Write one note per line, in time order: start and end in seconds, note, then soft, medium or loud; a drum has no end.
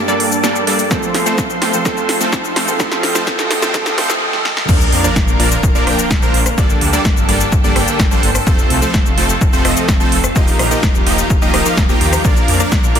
0.00 0.92 G2 medium
0.00 0.92 G3 medium
0.00 0.89 A#3 medium
0.00 0.93 A#3 medium
0.00 0.93 D4 medium
0.00 0.89 G4 medium
0.00 0.92 A4 medium
0.00 0.89 A5 medium
0.00 0.87 D6 medium
0.00 riser medium
0.08 0.16 G1 medium
0.08 0.41 G3 loud
0.08 0.41 A#3 medium
0.08 0.41 D4 medium
0.08 0.41 A4 medium
0.08 0.41 D5 loud
0.08 shaker soft
0.20 0.28 G1 medium
0.20 open hi-hat loud
0.32 shaker medium
0.44 0.59 G1 loud
0.44 0.64 G3 medium
0.44 0.64 A#3 medium
0.44 0.64 D4 medium
0.44 0.64 A4 medium
0.44 0.64 D5 loud
0.44 snare medium
0.44 shaker medium
0.56 shaker soft
0.67 0.82 G1 medium
0.67 0.84 G3 medium
0.67 0.84 A#3 medium
0.67 0.84 D4 medium
0.67 0.84 A4 medium
0.67 0.84 D5 loud
0.67 open hi-hat loud
0.79 open hi-hat medium
0.79 shaker medium
0.90 1.70 F3 medium
0.90 1.23 F3 medium
0.90 1.70 A3 medium
0.90 1.23 A3 medium
0.90 1.23 C4 medium
0.90 1.71 C4 medium
0.90 1.23 A4 medium
0.90 2.78 A4 medium
0.90 1.71 A4 medium
0.90 1.23 C5 medium
0.90 2.78 C5 medium
0.90 4.65 F5 medium
0.90 2.78 C6 medium
0.90 kick loud
0.90 snare medium
0.90 shaker medium
1.03 shaker soft
1.14 1.30 C2 medium
1.14 snare medium
1.14 open hi-hat loud
1.26 1.54 F3 medium
1.26 1.54 A3 medium
1.26 1.54 C4 medium
1.26 1.54 A4 medium
1.26 1.54 C5 loud
1.26 shaker medium
1.38 kick loud
1.38 snare medium
1.38 shaker medium
1.50 1.57 F1 medium
1.50 shaker soft
1.62 1.77 F1 loud
1.62 1.79 F3 medium
1.62 1.79 A3 medium
1.62 1.79 C4 medium
1.62 1.79 A4 medium
1.62 1.79 C5 medium
1.62 snare medium
1.62 open hi-hat loud
1.72 1.83 F3 medium
1.72 1.83 A3 medium
1.72 1.84 C4 medium
1.72 1.84 A4 medium
1.72 shaker medium
1.84 2.65 F3 medium
1.84 2.18 F3 medium
1.84 2.65 A3 medium
1.84 2.18 A3 medium
1.84 2.18 C4 medium
1.84 2.65 C4 medium
1.84 2.18 A4 medium
1.84 2.66 A4 medium
1.84 2.18 C5 medium
1.84 kick loud
1.84 snare medium
1.84 shaker medium
1.97 shaker soft
2.09 snare medium
2.09 open hi-hat loud
2.21 2.48 F3 medium
2.21 2.48 A3 medium
2.21 2.48 C4 medium
2.21 2.48 A4 medium
2.21 2.48 C5 loud
2.21 shaker medium
2.33 kick loud
2.33 snare medium
2.33 shaker medium
2.44 shaker soft
2.56 2.73 F3 medium
2.56 2.73 A3 medium
2.56 2.73 C4 medium
2.56 2.73 A4 medium
2.56 2.73 C5 medium
2.56 snare medium
2.56 open hi-hat loud
2.67 2.77 F3 medium
2.67 2.78 A3 medium
2.67 2.78 C4 medium
2.67 2.78 A4 loud
2.67 shaker medium
2.78 3.24 F3 medium
2.78 3.12 F3 medium
2.78 3.25 A3 medium
2.78 3.12 A3 medium
2.78 3.12 C4 medium
2.78 3.25 C4 medium
2.78 4.67 G4 medium
2.78 3.12 A4 medium
2.78 3.26 A4 loud
2.78 3.12 C5 loud
2.78 4.67 D#5 medium
2.78 kick loud
2.78 snare medium
2.78 shaker medium
2.92 snare medium
2.92 shaker soft
3.03 3.18 A#1 loud
3.03 snare medium
3.03 open hi-hat loud
3.15 3.25 F3 medium
3.15 3.25 A3 medium
3.15 3.25 C4 medium
3.15 3.25 A4 medium
3.15 3.25 C5 loud
3.15 snare medium
3.15 shaker medium
3.26 3.71 F3 medium
3.26 3.60 F3 medium
3.26 3.72 A3 medium
3.26 3.60 A3 medium
3.26 3.60 C4 medium
3.26 3.73 C4 medium
3.26 3.60 A4 medium
3.26 3.73 A4 loud
3.26 3.60 C5 loud
3.26 kick loud
3.26 snare medium
3.26 shaker medium
3.39 snare medium
3.39 shaker soft
3.51 snare medium
3.51 open hi-hat loud
3.62 3.72 F3 medium
3.62 3.72 A3 medium
3.62 3.72 C4 medium
3.62 3.72 A4 medium
3.62 3.72 C5 loud
3.62 snare medium
3.62 shaker medium
3.73 3.95 F3 medium
3.73 3.96 F3 medium
3.73 3.96 A3 medium
3.73 3.96 C4 medium
3.73 3.96 A4 medium
3.73 3.97 A4 loud
3.73 3.96 C5 loud
3.73 kick loud
3.73 snare loud
3.73 shaker medium
3.86 snare medium
3.86 shaker soft
3.97 4.19 F3 medium
3.97 4.20 F3 loud
3.97 4.19 A3 medium
3.97 4.20 A3 medium
3.97 4.20 C4 medium
3.97 4.20 A4 medium
3.97 4.20 A4 loud
3.97 4.20 C5 loud
3.97 snare loud
3.97 open hi-hat loud
4.10 snare medium
4.10 shaker medium
4.33 snare medium
4.45 snare medium
4.57 snare medium
4.69 4.84 A#1 loud
4.69 6.56 D3 medium
4.69 5.01 F3 medium
4.69 8.43 A#3 medium
4.69 5.01 A#3 medium
4.69 5.01 D4 medium
4.69 6.56 F4 medium
4.69 6.56 A#4 medium
4.69 5.01 A#4 medium
4.69 5.01 D5 loud
4.69 kick loud
4.69 crash loud
4.69 sub drop medium
4.69 shaker medium
4.81 shaker soft
4.92 5.08 F2 loud
4.92 open hi-hat loud
5.04 5.32 F3 medium
5.04 5.32 A#3 medium
5.04 5.32 D4 medium
5.04 5.32 A#4 medium
5.04 5.32 D5 loud
5.04 shaker medium
5.16 5.24 A#1 medium
5.16 kick loud
5.16 snare loud
5.16 shaker medium
5.28 5.35 A#1 medium
5.28 shaker soft
5.40 5.55 A#1 loud
5.40 5.57 F3 medium
5.40 5.57 A#3 medium
5.40 5.57 D4 medium
5.40 5.57 A#4 medium
5.40 5.57 D5 medium
5.40 open hi-hat loud
5.52 shaker medium
5.63 5.71 A#1 loud
5.63 kick loud
5.63 shaker medium
5.75 5.83 A#1 medium
5.75 5.85 F3 loud
5.75 5.85 A#3 medium
5.75 5.85 D4 medium
5.75 5.85 A#4 medium
5.75 5.85 D5 loud
5.75 shaker soft
5.87 5.94 A#1 medium
5.87 6.19 F3 medium
5.87 6.19 A#3 medium
5.87 6.20 D4 medium
5.87 6.19 A#4 medium
5.87 6.19 G5 medium
5.87 cross-stick medium
5.87 open hi-hat loud
5.99 shaker medium
6.11 6.26 A#1 loud
6.11 kick loud
6.11 snare loud
6.11 shaker medium
6.22 6.40 F3 medium
6.22 6.40 A#3 medium
6.22 6.40 D4 medium
6.22 6.40 A#4 medium
6.22 6.40 C5 loud
6.22 shaker soft
6.34 6.49 A#1 medium
6.34 open hi-hat loud
6.46 cross-stick medium
6.46 shaker medium
6.58 6.73 G1 loud
6.58 8.45 D3 medium
6.58 6.90 G3 medium
6.58 6.90 A#3 medium
6.58 6.90 D4 medium
6.58 8.45 G4 medium
6.58 6.90 A4 medium
6.58 10.32 A4 medium
6.58 6.90 D5 loud
6.58 kick loud
6.58 shaker medium
6.70 shaker soft
6.81 6.97 D2 loud
6.81 open hi-hat loud
6.93 7.21 G3 medium
6.93 7.21 A#3 medium
6.93 7.21 D4 medium
6.93 7.21 A4 medium
6.93 7.21 D5 loud
6.93 shaker medium
7.05 7.13 G1 medium
7.05 kick loud
7.05 snare loud
7.05 shaker medium
7.17 7.24 G1 medium
7.17 shaker soft
7.29 7.44 G1 loud
7.29 7.46 G3 medium
7.29 7.46 A#3 medium
7.29 7.46 D4 medium
7.29 7.46 A4 medium
7.29 7.46 D5 medium
7.29 open hi-hat loud
7.41 shaker medium
7.52 7.60 G1 loud
7.52 kick loud
7.52 shaker medium
7.64 7.72 G1 medium
7.64 7.74 G3 loud
7.64 7.74 A#3 medium
7.64 7.74 D4 medium
7.64 7.74 A4 medium
7.64 7.74 D5 loud
7.64 shaker soft
7.76 7.84 G1 medium
7.76 8.08 G3 medium
7.76 8.08 A#3 medium
7.76 8.08 D4 medium
7.76 8.08 A4 medium
7.76 8.08 G5 loud
7.76 cross-stick medium
7.76 open hi-hat loud
7.88 shaker medium
8.00 8.15 G1 loud
8.00 kick loud
8.00 snare loud
8.00 shaker medium
8.11 8.29 G3 medium
8.11 8.29 A#3 medium
8.11 8.29 D4 medium
8.11 8.29 A4 medium
8.11 8.29 C5 loud
8.11 shaker soft
8.23 8.38 G1 medium
8.23 open hi-hat loud
8.35 cross-stick medium
8.35 open hi-hat medium
8.35 shaker medium
8.47 8.62 F1 loud
8.47 10.34 C3 medium
8.47 8.79 F3 medium
8.47 10.34 A3 medium
8.47 8.79 A3 medium
8.47 8.79 C4 medium
8.47 12.99 F4 medium
8.47 8.79 A4 medium
8.47 8.79 C5 loud
8.47 kick loud
8.47 shaker medium
8.59 shaker soft
8.70 8.86 C2 loud
8.70 open hi-hat loud
8.82 9.10 F3 medium
8.82 9.10 A3 medium
8.82 9.10 C4 medium
8.82 9.10 A4 medium
8.82 9.10 C5 loud
8.82 shaker medium
8.94 9.02 F1 medium
8.94 kick loud
8.94 snare loud
8.94 shaker medium
9.06 9.13 F1 medium
9.06 shaker soft
9.18 9.33 F1 loud
9.18 9.35 F3 medium
9.18 9.35 A3 medium
9.18 9.35 C4 medium
9.18 9.35 A4 medium
9.18 9.35 C5 medium
9.18 open hi-hat loud
9.30 shaker medium
9.41 9.49 F1 loud
9.41 kick loud
9.41 shaker medium
9.53 9.61 F1 medium
9.53 9.63 F3 loud
9.53 9.63 A3 medium
9.53 9.63 C4 medium
9.53 9.63 A4 medium
9.53 9.63 C5 loud
9.53 shaker soft
9.65 9.72 F1 medium
9.65 9.97 F3 medium
9.65 9.97 A3 medium
9.65 9.97 C4 medium
9.65 9.97 A4 medium
9.65 9.97 D#5 medium
9.65 cross-stick medium
9.65 open hi-hat loud
9.77 shaker medium
9.89 10.04 F1 loud
9.89 kick loud
9.89 snare loud
9.89 shaker medium
10.00 10.18 F3 medium
10.00 10.18 A3 medium
10.00 10.18 C4 medium
10.00 10.18 A4 medium
10.00 10.17 C5 loud
10.00 shaker soft
10.12 10.27 F1 medium
10.12 open hi-hat loud
10.24 cross-stick medium
10.24 shaker medium
10.36 10.51 D#1 loud
10.36 12.23 D#3 medium
10.36 10.68 F3 loud
10.36 12.23 G3 medium
10.36 10.68 A#3 medium
10.36 10.68 D#4 medium
10.36 10.68 G4 medium
10.36 12.99 A#4 medium
10.36 10.68 D#5 loud
10.36 kick loud
10.36 shaker medium
10.48 open hi-hat medium
10.48 shaker soft
10.59 10.74 A#1 loud
10.59 cross-stick medium
10.59 open hi-hat loud
10.71 10.99 F3 medium
10.71 10.99 A#3 medium
10.71 10.99 D#4 medium
10.71 10.99 G4 medium
10.71 10.99 D#5 loud
10.71 shaker medium
10.83 10.91 D#1 medium
10.83 kick loud
10.83 snare loud
10.83 shaker medium
10.95 11.02 D#1 medium
10.95 shaker soft
11.07 11.22 D#1 loud
11.07 11.24 F3 medium
11.07 11.24 A#3 medium
11.07 11.24 D#4 medium
11.07 11.24 G4 medium
11.07 11.24 D#5 medium
11.07 open hi-hat loud
11.18 shaker medium
11.30 11.38 D#1 loud
11.30 kick loud
11.30 shaker medium
11.42 11.50 D#1 medium
11.42 11.51 F3 loud
11.42 11.51 A#3 medium
11.42 11.51 D#4 medium
11.42 11.51 G4 medium
11.42 11.51 D#5 loud
11.42 shaker soft
11.54 11.61 D#1 medium
11.54 11.64 F3 medium
11.54 11.64 A#3 medium
11.54 11.64 D#4 medium
11.54 11.64 G4 medium
11.54 11.64 D#5 loud
11.54 cross-stick medium
11.54 open hi-hat loud
11.66 11.83 F3 medium
11.66 11.83 A#3 medium
11.66 11.83 D#4 medium
11.66 11.83 G4 medium
11.66 11.83 F5 loud
11.66 shaker medium
11.77 11.93 D#1 medium
11.77 kick loud
11.77 snare loud
11.77 shaker medium
11.89 12.22 F3 medium
11.89 12.22 A#3 medium
11.89 12.22 D#4 medium
11.89 12.22 G4 medium
11.89 12.22 G5 medium
11.89 shaker soft
12.01 12.16 D#2 medium
12.01 open hi-hat loud
12.13 cross-stick medium
12.13 open hi-hat medium
12.13 shaker medium
12.25 12.40 A#1 loud
12.25 12.99 D3 medium
12.25 12.57 F3 medium
12.25 12.57 A#3 medium
12.25 12.99 A#3 medium
12.25 12.57 D4 medium
12.25 12.57 A#4 medium
12.25 12.57 D5 loud
12.25 kick loud
12.25 shaker medium
12.37 shaker soft
12.48 12.63 F2 loud
12.48 open hi-hat loud
12.60 12.88 F3 medium
12.60 12.88 A#3 medium
12.60 12.88 D4 medium
12.60 12.88 A#4 medium
12.60 12.88 D5 loud
12.60 shaker medium
12.72 12.79 A#1 medium
12.72 kick loud
12.72 snare loud
12.72 shaker medium
12.84 12.91 A#1 medium
12.84 shaker soft
12.95 12.99 A#1 loud
12.95 12.99 F3 medium
12.95 12.99 A#3 medium
12.95 12.99 D4 medium
12.95 12.99 A#4 medium
12.95 12.99 D5 medium
12.95 open hi-hat loud